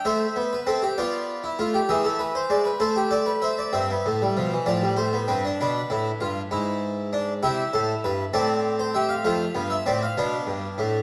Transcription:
<<
  \new Staff \with { instrumentName = "Harpsichord" } { \time 6/8 \key c \mixolydian \tempo 4. = 65 << { e''4. d''4. | e''4. c''8 d''8 e''8 | r2. | r2. |
e''4. d''8. c''16 e''16 f''16 | f''8. e''16 d''16 f''4.~ f''16 | } \\ { c''8. b'16 a'16 g'16 f'8. e'16 f'16 g'16 | gis'16 a'16 b'16 c''16 d''16 b'16 a'16 g'16 a'16 b'16 c''16 d''16 | e''4. d''8 c''8 b'8 | b'2. |
g'8 a'8 b'8 a'4 g'8 | f'4. d'4. | } >> }
  \new Staff \with { instrumentName = "Harpsichord" } { \clef bass \time 6/8 \key c \mixolydian << { a8 b8 c'8 b4 a8 | e4 gis8 a4. | c'16 b16 a16 g16 f16 e16 f16 g16 a16 b16 c'16 d'16 | d'8 e'8 f'8 e'4 d'8 |
e'4. c'4. | a8 b8 c'8 b4 a8 | } \\ { r2. | r2. | g,8 a,8 b,8 a,4 g,8 | b,8 a,8 g,8 gis,4. |
c8 a,8 g,8 a,4. | f,8 g,8 a,8 b,8 g,8 a,8 | } >> }
>>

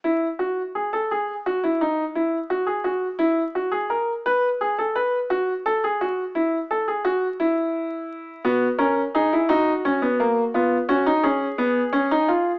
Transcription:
\new Staff \with { instrumentName = "Grand piano" } { \time 12/8 \key b \mixolydian \tempo 4. = 57 << { e'8 fis'8 gis'16 a'16 gis'8 fis'16 e'16 dis'8 e'8 fis'16 gis'16 fis'8 e'8 fis'16 gis'16 ais'8 | b'8 gis'16 a'16 b'8 fis'8 a'16 gis'16 fis'8 e'8 a'16 gis'16 fis'8 e'4. | fis'8 ais'8 gis'8 fis'4. eis'8 fis'8 gis'2 | } \\ { r1. | r1. | b8 cis'8 dis'16 e'16 dis'8 cis'16 b16 ais8 b8 cis'16 dis'16 cis'8 b8 cis'16 dis'16 eis'8 | } >> }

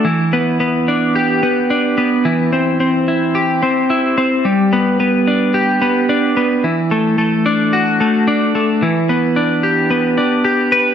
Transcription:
\new Staff \with { instrumentName = "Clean electric guitar" } { \time 4/4 \key e \minor \tempo 4 = 110 e8 b8 b8 d'8 g'8 b8 d'8 b8 | e8 c'8 c'8 e'8 g'8 c'8 e'8 c'8 | g8 b8 b8 d'8 g'8 b8 d'8 b8 | e8 a8 a8 d'8 fis'8 a8 d'8 a8 |
e8 b8 d'8 g'8 b8 d'8 g'8 b'8 | }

